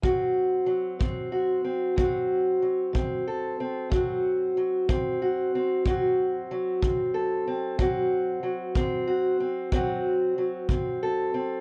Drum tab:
BD |o--o--o--o--|o--o--o--o--|o--o--o--o--|